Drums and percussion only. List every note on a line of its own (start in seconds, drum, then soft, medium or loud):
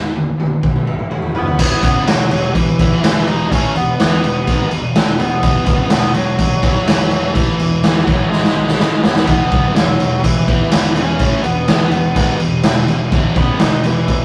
0.15 high tom medium
0.40 high tom medium
0.63 kick loud
0.63 mid tom medium
0.76 mid tom medium
0.87 mid tom medium
0.99 mid tom medium
1.11 mid tom medium
1.22 floor tom medium
1.35 floor tom medium
1.47 floor tom medium
1.59 kick loud
1.59 crash loud
1.59 crash medium
1.83 kick loud
1.83 crash medium
2.07 snare loud
2.07 crash medium
2.31 crash medium
2.55 kick loud
2.55 crash medium
2.79 kick loud
2.79 crash medium
3.04 snare loud
3.04 crash loud
3.27 crash medium
3.52 kick loud
3.52 crash medium
3.76 crash medium
4.00 snare loud
4.00 crash medium
4.24 crash medium
4.47 kick loud
4.47 crash medium
4.71 crash medium
4.95 snare loud
4.95 crash loud
5.19 crash medium
5.43 kick loud
5.43 crash medium
5.66 kick loud
5.66 crash medium
5.90 snare loud
5.90 crash loud
6.14 crash medium
6.38 kick medium
6.38 crash medium
6.63 kick loud
6.63 crash medium
6.87 snare loud
6.87 crash loud
7.11 crash medium
7.35 kick loud
7.35 crash medium
7.59 crash medium
7.83 snare loud
7.83 crash medium
8.07 kick loud
8.07 crash medium
8.32 snare medium
8.44 snare medium
8.68 snare medium
8.79 snare loud
9.04 snare loud
9.16 snare loud
9.27 kick loud
9.27 crash medium
9.52 kick loud
9.52 crash medium
9.76 snare loud
9.76 crash medium
10.00 crash medium
10.24 kick medium
10.24 crash medium
10.48 kick loud
10.48 crash medium
10.71 snare loud
10.71 crash loud
10.96 crash medium
11.19 kick loud
11.19 crash medium
11.44 crash medium
11.68 snare loud
11.68 crash medium
11.91 crash medium
12.16 kick loud
12.16 crash medium
12.40 crash medium
12.63 snare loud
12.63 crash loud
12.88 crash medium
13.12 kick loud
13.12 crash medium
13.36 kick loud
13.36 crash medium
13.59 snare loud
13.59 crash medium
13.84 crash medium
14.08 kick medium
14.08 crash medium